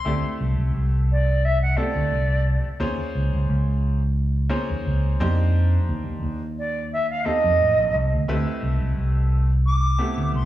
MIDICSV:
0, 0, Header, 1, 5, 480
1, 0, Start_track
1, 0, Tempo, 684932
1, 44, Time_signature, 4, 2, 24, 8
1, 7324, End_track
2, 0, Start_track
2, 0, Title_t, "Flute"
2, 0, Program_c, 0, 73
2, 0, Note_on_c, 0, 84, 96
2, 271, Note_off_c, 0, 84, 0
2, 784, Note_on_c, 0, 74, 87
2, 1016, Note_on_c, 0, 76, 92
2, 1026, Note_off_c, 0, 74, 0
2, 1131, Note_off_c, 0, 76, 0
2, 1136, Note_on_c, 0, 78, 81
2, 1238, Note_on_c, 0, 74, 102
2, 1249, Note_off_c, 0, 78, 0
2, 1939, Note_off_c, 0, 74, 0
2, 4615, Note_on_c, 0, 74, 82
2, 4842, Note_off_c, 0, 74, 0
2, 4855, Note_on_c, 0, 76, 86
2, 4970, Note_off_c, 0, 76, 0
2, 4976, Note_on_c, 0, 77, 89
2, 5081, Note_on_c, 0, 75, 114
2, 5092, Note_off_c, 0, 77, 0
2, 5781, Note_off_c, 0, 75, 0
2, 6770, Note_on_c, 0, 86, 100
2, 7233, Note_off_c, 0, 86, 0
2, 7255, Note_on_c, 0, 84, 92
2, 7324, Note_off_c, 0, 84, 0
2, 7324, End_track
3, 0, Start_track
3, 0, Title_t, "Grand piano"
3, 0, Program_c, 1, 0
3, 34, Note_on_c, 1, 57, 71
3, 38, Note_on_c, 1, 64, 65
3, 39, Note_on_c, 1, 60, 66
3, 41, Note_on_c, 1, 67, 60
3, 45, Note_on_c, 1, 74, 77
3, 869, Note_off_c, 1, 57, 0
3, 872, Note_off_c, 1, 60, 0
3, 872, Note_off_c, 1, 64, 0
3, 873, Note_off_c, 1, 67, 0
3, 875, Note_off_c, 1, 74, 0
3, 1236, Note_on_c, 1, 57, 68
3, 1238, Note_on_c, 1, 60, 66
3, 1243, Note_on_c, 1, 64, 66
3, 1244, Note_on_c, 1, 69, 85
3, 1248, Note_on_c, 1, 67, 63
3, 1865, Note_off_c, 1, 57, 0
3, 1866, Note_off_c, 1, 60, 0
3, 1868, Note_off_c, 1, 64, 0
3, 1869, Note_off_c, 1, 69, 0
3, 1871, Note_off_c, 1, 67, 0
3, 1960, Note_on_c, 1, 58, 85
3, 1962, Note_on_c, 1, 61, 83
3, 1965, Note_on_c, 1, 65, 76
3, 1965, Note_on_c, 1, 68, 80
3, 1966, Note_on_c, 1, 72, 95
3, 2792, Note_off_c, 1, 58, 0
3, 2793, Note_off_c, 1, 61, 0
3, 2794, Note_off_c, 1, 65, 0
3, 2794, Note_off_c, 1, 68, 0
3, 2795, Note_off_c, 1, 72, 0
3, 3150, Note_on_c, 1, 58, 87
3, 3151, Note_on_c, 1, 61, 78
3, 3154, Note_on_c, 1, 65, 79
3, 3155, Note_on_c, 1, 68, 77
3, 3157, Note_on_c, 1, 72, 92
3, 3635, Note_off_c, 1, 58, 0
3, 3637, Note_off_c, 1, 61, 0
3, 3638, Note_off_c, 1, 65, 0
3, 3638, Note_off_c, 1, 68, 0
3, 3639, Note_off_c, 1, 72, 0
3, 3645, Note_on_c, 1, 58, 95
3, 3646, Note_on_c, 1, 62, 90
3, 3646, Note_on_c, 1, 63, 81
3, 3650, Note_on_c, 1, 67, 85
3, 3650, Note_on_c, 1, 72, 101
3, 4474, Note_off_c, 1, 58, 0
3, 4475, Note_off_c, 1, 62, 0
3, 4475, Note_off_c, 1, 63, 0
3, 4477, Note_off_c, 1, 67, 0
3, 4477, Note_off_c, 1, 72, 0
3, 5078, Note_on_c, 1, 58, 70
3, 5081, Note_on_c, 1, 63, 65
3, 5082, Note_on_c, 1, 60, 67
3, 5082, Note_on_c, 1, 67, 64
3, 5086, Note_on_c, 1, 69, 81
3, 5706, Note_off_c, 1, 58, 0
3, 5707, Note_off_c, 1, 63, 0
3, 5708, Note_off_c, 1, 60, 0
3, 5708, Note_off_c, 1, 67, 0
3, 5710, Note_off_c, 1, 69, 0
3, 5804, Note_on_c, 1, 57, 82
3, 5807, Note_on_c, 1, 60, 82
3, 5807, Note_on_c, 1, 64, 77
3, 5809, Note_on_c, 1, 71, 92
3, 5811, Note_on_c, 1, 67, 74
3, 6635, Note_off_c, 1, 57, 0
3, 6636, Note_off_c, 1, 60, 0
3, 6637, Note_off_c, 1, 64, 0
3, 6637, Note_off_c, 1, 71, 0
3, 6638, Note_off_c, 1, 67, 0
3, 6997, Note_on_c, 1, 57, 73
3, 6998, Note_on_c, 1, 60, 70
3, 7004, Note_on_c, 1, 64, 65
3, 7005, Note_on_c, 1, 67, 70
3, 7007, Note_on_c, 1, 59, 76
3, 7324, Note_off_c, 1, 57, 0
3, 7324, Note_off_c, 1, 59, 0
3, 7324, Note_off_c, 1, 60, 0
3, 7324, Note_off_c, 1, 64, 0
3, 7324, Note_off_c, 1, 67, 0
3, 7324, End_track
4, 0, Start_track
4, 0, Title_t, "Fingered electric bass"
4, 0, Program_c, 2, 33
4, 40, Note_on_c, 2, 38, 85
4, 149, Note_off_c, 2, 38, 0
4, 285, Note_on_c, 2, 36, 86
4, 392, Note_off_c, 2, 36, 0
4, 409, Note_on_c, 2, 36, 72
4, 503, Note_off_c, 2, 36, 0
4, 521, Note_on_c, 2, 36, 86
4, 1226, Note_off_c, 2, 36, 0
4, 1370, Note_on_c, 2, 38, 72
4, 1463, Note_off_c, 2, 38, 0
4, 1487, Note_on_c, 2, 36, 81
4, 1792, Note_off_c, 2, 36, 0
4, 1961, Note_on_c, 2, 39, 91
4, 2070, Note_off_c, 2, 39, 0
4, 2209, Note_on_c, 2, 37, 82
4, 2314, Note_off_c, 2, 37, 0
4, 2342, Note_on_c, 2, 37, 77
4, 2430, Note_off_c, 2, 37, 0
4, 2448, Note_on_c, 2, 37, 93
4, 3150, Note_off_c, 2, 37, 0
4, 3294, Note_on_c, 2, 39, 82
4, 3385, Note_off_c, 2, 39, 0
4, 3407, Note_on_c, 2, 37, 84
4, 3604, Note_off_c, 2, 37, 0
4, 3642, Note_on_c, 2, 41, 95
4, 4041, Note_off_c, 2, 41, 0
4, 4127, Note_on_c, 2, 39, 82
4, 4232, Note_off_c, 2, 39, 0
4, 4254, Note_on_c, 2, 39, 68
4, 4345, Note_off_c, 2, 39, 0
4, 4364, Note_on_c, 2, 39, 87
4, 5068, Note_off_c, 2, 39, 0
4, 5216, Note_on_c, 2, 41, 78
4, 5306, Note_off_c, 2, 41, 0
4, 5316, Note_on_c, 2, 33, 80
4, 5436, Note_off_c, 2, 33, 0
4, 5450, Note_on_c, 2, 34, 78
4, 5550, Note_off_c, 2, 34, 0
4, 5564, Note_on_c, 2, 36, 78
4, 5680, Note_off_c, 2, 36, 0
4, 5693, Note_on_c, 2, 38, 74
4, 5792, Note_off_c, 2, 38, 0
4, 5804, Note_on_c, 2, 38, 87
4, 5911, Note_off_c, 2, 38, 0
4, 6046, Note_on_c, 2, 36, 78
4, 6152, Note_off_c, 2, 36, 0
4, 6177, Note_on_c, 2, 36, 73
4, 6267, Note_off_c, 2, 36, 0
4, 6277, Note_on_c, 2, 36, 85
4, 6985, Note_off_c, 2, 36, 0
4, 7131, Note_on_c, 2, 38, 81
4, 7224, Note_off_c, 2, 38, 0
4, 7240, Note_on_c, 2, 36, 83
4, 7324, Note_off_c, 2, 36, 0
4, 7324, End_track
5, 0, Start_track
5, 0, Title_t, "Muted fingered electric bass strokes"
5, 1856, Note_on_c, 9, 29, 35
5, 1926, Note_off_c, 9, 29, 0
5, 7324, End_track
0, 0, End_of_file